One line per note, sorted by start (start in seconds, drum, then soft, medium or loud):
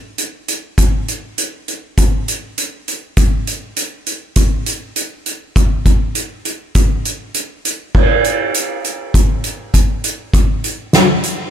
0.18 closed hi-hat soft
0.48 closed hi-hat soft
0.78 kick medium
0.78 closed hi-hat medium
1.08 closed hi-hat soft
1.38 closed hi-hat medium
1.68 closed hi-hat soft
1.98 kick medium
1.98 closed hi-hat medium
2.28 closed hi-hat soft
2.58 closed hi-hat soft
2.88 closed hi-hat soft
3.17 kick medium
3.17 closed hi-hat medium
3.47 closed hi-hat soft
3.77 closed hi-hat medium
4.07 closed hi-hat soft
4.36 kick medium
4.36 closed hi-hat medium
4.66 closed hi-hat soft
4.96 closed hi-hat medium
5.26 closed hi-hat soft
5.56 kick medium
5.56 closed hi-hat medium
5.86 kick medium
5.86 closed hi-hat soft
6.15 closed hi-hat medium
6.45 closed hi-hat soft
6.75 kick medium
6.75 closed hi-hat medium
7.05 closed hi-hat soft
7.34 closed hi-hat medium
7.65 closed hi-hat soft
7.95 kick medium
7.95 crash medium
8.24 closed hi-hat soft
8.54 closed hi-hat medium
8.85 closed hi-hat soft
9.14 kick medium
9.14 closed hi-hat medium
9.44 closed hi-hat soft
9.74 kick soft
9.74 closed hi-hat medium
10.04 closed hi-hat soft
10.34 kick medium
10.34 closed hi-hat medium
10.64 closed hi-hat soft
10.93 snare medium
10.93 closed hi-hat medium
11.24 closed hi-hat soft